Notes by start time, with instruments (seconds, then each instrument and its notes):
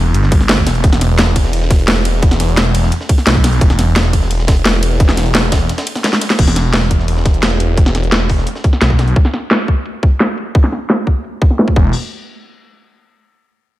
Already playing: detuned saw bass E1
0.14 detuned saw bass G1, closed hi-hat
0.23 snare
0.32 kick, closed hi-hat, ride
0.41 snare
0.49 snare, closed hi-hat
0.58 kick
0.66 detuned saw bass E1, snare, closed hi-hat, ride
0.75 closed hi-hat
0.84 detuned saw bass E1, kick, closed hi-hat
0.93 snare
1.01 snare, closed hi-hat, ride
1.19 snare, closed hi-hat
1.27 snare
1.36 kick, closed hi-hat, ride
1.45 snare
1.53 closed hi-hat, open hi-hat
1.62 snare
1.70 detuned saw bass E1, kick, snare, closed hi-hat, ride
1.79 closed hi-hat
1.88 snare, closed hi-hat
1.97 snare
2.05 closed hi-hat, ride
2.23 kick, closed hi-hat
2.31 snare
2.40 snare, closed hi-hat, ride
2.49 closed hi-hat
2.57 detuned saw bass E1, snare, closed hi-hat
2.75 closed hi-hat, open hi-hat, ride
2.83 snare
2.92 closed hi-hat
3.01 snare
3.09 kick, closed hi-hat, ride
3.18 snare
3.27 detuned saw bass B1, snare, closed hi-hat
3.35 kick
3.44 snare, closed hi-hat, ride
3.53 closed hi-hat
3.61 detuned saw bass E1, kick, closed hi-hat
3.70 snare
3.79 snare, closed hi-hat, ride
3.96 snare, closed hi-hat
4.05 snare
4.13 kick, closed hi-hat, ride
4.22 snare
4.31 closed hi-hat, open hi-hat
4.39 snare
4.48 detuned saw bass E1, kick, snare, closed hi-hat, ride
4.57 closed hi-hat
4.65 snare, closed hi-hat
4.74 snare
4.83 closed hi-hat, ride
5.00 kick, closed hi-hat
5.09 snare
5.17 snare, closed hi-hat, ride
5.26 closed hi-hat
5.35 detuned saw bass E1, snare, closed hi-hat
5.52 kick, snare, closed hi-hat, ride
5.69 snare, closed hi-hat
5.78 snare, closed hi-hat
5.87 closed hi-hat, ride
5.95 snare, closed hi-hat
6.04 snare, closed hi-hat
6.13 snare
6.21 snare, closed hi-hat, ride
6.30 snare, closed hi-hat
6.39 detuned saw bass E1, kick, closed hi-hat, crash
6.48 snare
6.56 snare, closed hi-hat
6.73 snare, closed hi-hat
6.82 snare
6.91 kick, closed hi-hat
6.99 snare
7.08 closed hi-hat, open hi-hat
7.17 snare
7.25 detuned saw bass E1, kick, snare, closed hi-hat
7.34 closed hi-hat
7.43 snare, closed hi-hat
7.51 snare
7.60 closed hi-hat
7.77 kick, closed hi-hat
7.86 snare
7.95 snare, closed hi-hat
8.03 closed hi-hat
8.12 detuned saw bass E1, snare, closed hi-hat
8.29 kick, closed hi-hat, open hi-hat
8.38 snare
8.47 closed hi-hat
8.55 snare
8.64 kick, closed hi-hat
8.73 snare
8.81 detuned saw bass B1, snare, closed hi-hat
8.90 kick
8.99 snare, closed hi-hat
9.08 closed hi-hat
9.16 kick, closed hi-hat
9.25 snare
9.34 snare, closed hi-hat
9.51 snare, closed hi-hat
9.68 kick, closed hi-hat
9.86 closed hi-hat
10.03 kick, closed hi-hat
10.20 snare, closed hi-hat
10.38 closed hi-hat
10.55 kick
10.64 snare
10.72 snare, closed hi-hat
10.90 snare, closed hi-hat
11.07 kick
11.24 closed hi-hat
11.42 kick
11.50 snare
11.59 snare, closed hi-hat
11.68 kick
11.76 detuned saw bass E1, kick, crash